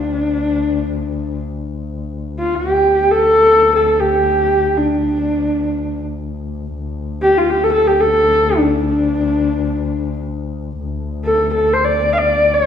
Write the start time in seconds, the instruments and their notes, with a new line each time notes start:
Already playing: double bass D2, horsehead fiddle D4
2.39 horsehead fiddle F4
2.55 horsehead fiddle G4
2.63 double bass D2
3.12 horsehead fiddle A4
3.76 horsehead fiddle A4
4.00 horsehead fiddle G4
4.78 horsehead fiddle D4
6.75 double bass D2
7.22 horsehead fiddle G4
7.38 horsehead fiddle F4
7.50 horsehead fiddle G4
7.64 horsehead fiddle A4
7.73 horsehead fiddle A4
7.88 horsehead fiddle G4
8.01 horsehead fiddle A4
8.58 horsehead fiddle D4
10.80 double bass D2
11.25 horsehead fiddle A4
11.54 horsehead fiddle A4
11.74 horsehead fiddle C5
11.85 horsehead fiddle D5
12.14 horsehead fiddle F5
12.18 horsehead fiddle D5
12.54 horsehead fiddle C5